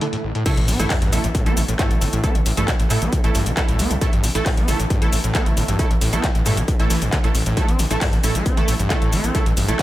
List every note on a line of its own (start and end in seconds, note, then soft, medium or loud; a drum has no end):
0.00 0.50 A2 medium
0.00 0.08 D3 loud
0.00 0.43 A3 medium
0.00 0.43 E4 medium
0.00 0.43 A4 loud
0.00 closed hi-hat medium
0.13 0.16 A2 loud
0.13 closed hi-hat soft
0.24 0.33 A1 medium
0.35 0.44 A2 loud
0.35 closed hi-hat soft
0.46 0.57 A3 loud
0.46 0.57 E4 medium
0.46 0.57 A4 loud
0.46 kick loud
0.46 closed hi-hat medium
0.46 crash loud
0.46 sub drop medium
0.46 shaker soft
0.57 0.64 A1 medium
0.57 0.69 A2 medium
0.57 closed hi-hat medium
0.68 0.75 A1 loud
0.68 0.81 C4 medium
0.68 snare soft
0.68 closed hi-hat medium
0.68 open hi-hat loud
0.68 shaker medium
0.79 0.86 A1 medium
0.79 0.85 A2 medium
0.79 0.96 A3 medium
0.79 0.96 E4 medium
0.79 0.96 A4 loud
0.79 snare soft
0.79 closed hi-hat medium
0.79 shaker soft
0.90 0.97 A2 medium
0.90 kick loud
0.90 snare loud
0.90 clap loud
0.90 closed hi-hat medium
0.90 open hi-hat medium
0.90 shaker soft
1.02 1.09 A1 medium
1.02 1.14 G2 loud
1.02 closed hi-hat medium
1.12 1.20 A1 loud
1.12 1.19 C3 medium
1.12 1.23 A3 medium
1.12 1.23 E4 medium
1.12 1.23 A4 medium
1.12 closed hi-hat medium
1.12 open hi-hat loud
1.12 shaker medium
1.24 1.31 A1 medium
1.24 1.27 A2 medium
1.24 closed hi-hat medium
1.24 shaker soft
1.35 1.48 A2 medium
1.35 kick loud
1.35 closed hi-hat medium
1.35 shaker soft
1.46 1.53 A1 medium
1.46 1.63 A3 loud
1.46 1.58 C4 medium
1.46 1.63 E4 medium
1.46 1.63 A4 loud
1.46 closed hi-hat medium
1.57 1.64 A1 loud
1.57 1.63 A2 medium
1.57 closed hi-hat medium
1.57 open hi-hat loud
1.57 shaker medium
1.68 1.75 A1 medium
1.68 1.74 A2 medium
1.68 closed hi-hat medium
1.68 shaker soft
1.79 1.92 G2 loud
1.79 2.21 A3 medium
1.79 2.21 E4 medium
1.79 2.21 A4 loud
1.79 kick loud
1.79 snare loud
1.79 clap loud
1.79 closed hi-hat medium
1.79 shaker soft
1.91 1.97 A1 medium
1.91 1.97 C3 medium
1.91 closed hi-hat medium
2.01 2.09 G1 loud
2.01 2.05 A2 medium
2.01 closed hi-hat medium
2.01 open hi-hat loud
2.01 shaker medium
2.13 2.20 A1 medium
2.13 2.25 A2 medium
2.13 closed hi-hat medium
2.13 shaker soft
2.23 2.34 A3 medium
2.23 2.37 C4 medium
2.23 2.34 E4 medium
2.23 2.34 A4 loud
2.23 kick loud
2.23 closed hi-hat medium
2.23 shaker soft
2.35 2.42 A1 medium
2.35 2.41 A2 medium
2.35 closed hi-hat medium
2.46 2.53 A1 medium
2.46 2.52 A2 medium
2.46 closed hi-hat medium
2.46 open hi-hat loud
2.46 shaker medium
2.57 2.64 A1 medium
2.57 2.69 G2 loud
2.57 2.74 A3 medium
2.57 2.74 E4 medium
2.57 2.74 A4 loud
2.57 closed hi-hat medium
2.57 shaker soft
2.68 2.74 C3 medium
2.68 kick loud
2.68 snare loud
2.68 clap loud
2.68 closed hi-hat medium
2.68 shaker soft
2.79 2.86 A1 medium
2.79 2.83 A2 medium
2.79 closed hi-hat medium
2.90 3.03 A2 medium
2.90 2.98 A2 loud
2.90 3.01 A3 medium
2.90 3.01 E4 medium
2.90 3.01 A4 medium
2.90 clap soft
2.90 closed hi-hat medium
2.90 open hi-hat loud
2.90 shaker medium
3.02 3.09 A1 medium
3.02 3.14 C4 medium
3.02 closed hi-hat medium
3.02 shaker soft
3.12 3.19 A2 medium
3.12 kick loud
3.12 closed hi-hat medium
3.12 shaker soft
3.24 3.31 A1 medium
3.24 3.30 A2 medium
3.24 3.41 A3 loud
3.24 3.41 E4 medium
3.24 3.41 A4 loud
3.24 closed hi-hat medium
3.35 3.42 A1 loud
3.35 3.48 G2 loud
3.35 snare soft
3.35 closed hi-hat medium
3.35 open hi-hat loud
3.35 shaker medium
3.46 3.53 A1 medium
3.46 3.52 C3 medium
3.46 closed hi-hat medium
3.46 shaker soft
3.57 3.61 A2 medium
3.57 3.99 A3 medium
3.57 3.99 E4 medium
3.57 3.99 A4 loud
3.57 kick loud
3.57 snare loud
3.57 clap loud
3.57 closed hi-hat medium
3.57 shaker soft
3.68 3.75 C2 medium
3.68 3.81 A2 medium
3.68 closed hi-hat medium
3.79 3.86 C2 loud
3.79 3.92 C4 medium
3.79 closed hi-hat medium
3.79 open hi-hat loud
3.79 shaker medium
3.91 3.97 C2 loud
3.91 3.97 A2 medium
3.91 closed hi-hat medium
3.91 shaker soft
4.01 4.08 A2 medium
4.01 4.12 A3 loud
4.01 4.12 E4 medium
4.01 4.12 A4 loud
4.01 kick loud
4.01 closed hi-hat medium
4.01 shaker soft
4.13 4.20 A1 medium
4.13 4.25 G2 loud
4.13 closed hi-hat medium
4.24 4.31 A1 medium
4.24 4.30 C3 medium
4.24 snare soft
4.24 closed hi-hat medium
4.24 open hi-hat loud
4.24 shaker medium
4.35 4.42 A1 medium
4.35 4.39 A2 medium
4.35 4.52 A3 medium
4.35 4.52 E4 medium
4.35 4.52 A4 loud
4.35 snare soft
4.35 closed hi-hat medium
4.35 shaker soft
4.46 4.59 A2 medium
4.46 kick loud
4.46 snare loud
4.46 clap loud
4.46 closed hi-hat medium
4.46 open hi-hat medium
4.46 shaker soft
4.57 4.64 A1 medium
4.57 4.70 C4 medium
4.57 closed hi-hat medium
4.68 4.75 A1 loud
4.68 4.74 A2 medium
4.68 4.79 A3 medium
4.68 4.79 E4 medium
4.68 4.79 A4 medium
4.68 closed hi-hat medium
4.68 open hi-hat loud
4.68 shaker medium
4.80 4.86 A1 medium
4.80 4.85 A2 medium
4.80 closed hi-hat medium
4.80 shaker soft
4.90 5.03 G2 loud
4.90 kick loud
4.90 closed hi-hat medium
4.90 shaker soft
5.02 5.09 A1 medium
5.02 5.08 C3 medium
5.02 5.18 A3 loud
5.02 5.18 E4 medium
5.02 5.18 A4 loud
5.02 closed hi-hat medium
5.12 5.20 A1 loud
5.12 5.16 A2 medium
5.12 closed hi-hat medium
5.12 open hi-hat loud
5.12 shaker medium
5.24 5.31 A1 medium
5.24 5.36 A2 medium
5.24 closed hi-hat medium
5.24 shaker soft
5.35 5.77 A3 medium
5.35 5.48 C4 medium
5.35 5.77 E4 medium
5.35 5.77 A4 loud
5.35 kick loud
5.35 snare loud
5.35 clap loud
5.35 closed hi-hat medium
5.35 shaker soft
5.46 5.53 A1 medium
5.46 5.52 A2 medium
5.46 closed hi-hat medium
5.57 5.64 G1 loud
5.57 5.63 A2 medium
5.57 closed hi-hat medium
5.57 open hi-hat loud
5.57 shaker medium
5.68 5.75 A1 medium
5.68 5.81 G2 loud
5.68 closed hi-hat medium
5.68 shaker soft
5.79 5.85 C3 medium
5.79 5.90 A3 loud
5.79 5.90 E4 medium
5.79 5.90 A4 loud
5.79 kick loud
5.79 closed hi-hat medium
5.79 shaker soft
5.91 5.97 A1 medium
5.91 5.94 A2 medium
5.91 closed hi-hat medium
6.01 6.09 A1 loud
6.01 6.14 A2 medium
6.01 closed hi-hat medium
6.01 open hi-hat loud
6.01 shaker medium
6.13 6.20 A1 loud
6.13 6.29 A3 medium
6.13 6.25 C4 medium
6.13 6.29 E4 medium
6.13 6.29 A4 loud
6.13 closed hi-hat medium
6.13 shaker soft
6.24 6.30 A2 medium
6.24 kick loud
6.24 snare loud
6.24 clap loud
6.24 closed hi-hat medium
6.24 shaker soft
6.35 6.42 A1 medium
6.35 6.41 A2 medium
6.35 closed hi-hat medium
6.46 6.59 G2 loud
6.46 6.53 A2 loud
6.46 6.57 A3 medium
6.46 6.57 E4 medium
6.46 6.57 A4 medium
6.46 clap soft
6.46 closed hi-hat medium
6.46 open hi-hat loud
6.46 shaker medium
6.57 6.64 A1 medium
6.57 6.63 C3 medium
6.57 closed hi-hat medium
6.57 shaker soft
6.68 6.72 A2 medium
6.68 kick loud
6.68 closed hi-hat medium
6.68 shaker soft
6.79 6.86 A1 medium
6.79 6.88 A2 medium
6.79 6.96 A3 medium
6.79 6.96 E4 medium
6.79 6.96 A4 loud
6.79 closed hi-hat medium
6.90 6.98 A1 loud
6.90 7.03 E3 medium
6.90 snare soft
6.90 closed hi-hat medium
6.90 open hi-hat loud
6.90 shaker medium
7.02 7.09 A1 medium
7.02 7.11 G2 medium
7.02 closed hi-hat medium
7.02 shaker soft
7.12 7.19 D3 loud
7.12 kick loud
7.12 snare loud
7.12 clap loud
7.12 closed hi-hat medium
7.12 shaker soft
7.24 7.31 A1 medium
7.24 7.27 A2 loud
7.24 7.34 A3 medium
7.24 7.34 E4 medium
7.24 7.34 A4 medium
7.24 closed hi-hat soft
7.35 7.44 A1 medium
7.35 7.42 A1 loud
7.35 closed hi-hat medium
7.35 open hi-hat loud
7.35 shaker medium
7.46 7.53 A1 medium
7.46 7.58 A2 loud
7.46 closed hi-hat medium
7.46 shaker soft
7.57 7.70 A3 medium
7.57 7.68 A3 medium
7.57 7.68 E4 medium
7.57 7.68 A4 loud
7.57 kick loud
7.57 closed hi-hat medium
7.57 shaker soft
7.68 7.75 A1 medium
7.68 7.81 C4 medium
7.68 closed hi-hat medium
7.79 7.86 A1 loud
7.79 7.85 A2 medium
7.79 snare soft
7.79 closed hi-hat medium
7.79 open hi-hat loud
7.79 shaker medium
7.91 7.97 A1 loud
7.91 7.97 A2 medium
7.91 8.07 A3 medium
7.91 8.07 E4 medium
7.91 8.07 A4 loud
7.91 snare soft
7.91 closed hi-hat soft
7.91 shaker soft
8.01 8.14 G2 loud
8.01 kick loud
8.01 snare loud
8.01 clap loud
8.01 closed hi-hat medium
8.01 open hi-hat medium
8.01 shaker soft
8.13 8.20 A1 medium
8.13 8.19 C3 medium
8.13 closed hi-hat medium
8.24 8.31 A1 loud
8.24 8.37 A2 medium
8.24 8.34 A3 medium
8.24 8.34 E4 medium
8.24 8.34 A4 medium
8.24 closed hi-hat medium
8.24 open hi-hat loud
8.24 shaker medium
8.35 8.42 A1 loud
8.35 8.47 A3 medium
8.35 closed hi-hat soft
8.35 shaker soft
8.46 8.59 C4 medium
8.46 kick loud
8.46 closed hi-hat medium
8.46 shaker soft
8.57 8.64 A1 medium
8.57 8.63 A2 medium
8.57 8.74 A3 loud
8.57 8.74 E4 medium
8.57 8.74 A4 loud
8.57 closed hi-hat medium
8.68 8.75 A1 loud
8.68 8.74 A2 medium
8.68 closed hi-hat medium
8.68 open hi-hat loud
8.68 shaker medium
8.79 8.86 A1 loud
8.79 8.92 G2 loud
8.79 closed hi-hat medium
8.79 shaker soft
8.90 8.97 C3 medium
8.90 9.32 A3 medium
8.90 9.32 E4 medium
8.90 9.32 A4 loud
8.90 kick loud
8.90 snare loud
8.90 clap loud
8.90 closed hi-hat medium
8.90 shaker soft
9.02 9.09 A1 medium
9.02 9.14 A2 medium
9.02 closed hi-hat soft
9.12 9.20 G1 loud
9.12 9.25 A3 medium
9.12 closed hi-hat medium
9.12 open hi-hat loud
9.12 shaker medium
9.24 9.31 A1 medium
9.24 9.36 C4 medium
9.24 closed hi-hat medium
9.24 shaker soft
9.35 9.41 A2 medium
9.35 9.46 A3 loud
9.35 9.46 E4 medium
9.35 9.46 A4 loud
9.35 kick loud
9.35 closed hi-hat medium
9.35 shaker soft
9.46 9.53 A1 medium
9.46 9.52 A2 medium
9.46 closed hi-hat soft
9.57 9.64 A1 loud
9.57 9.70 G2 loud
9.57 closed hi-hat medium
9.57 open hi-hat loud
9.57 shaker medium
9.68 9.75 A1 medium
9.68 9.74 C3 medium
9.68 9.82 A3 medium
9.68 9.82 E4 medium
9.68 9.82 A4 loud
9.68 closed hi-hat medium
9.68 shaker soft
9.79 9.82 A2 medium
9.79 kick loud
9.79 snare loud
9.79 clap loud
9.79 closed hi-hat medium
9.79 shaker soft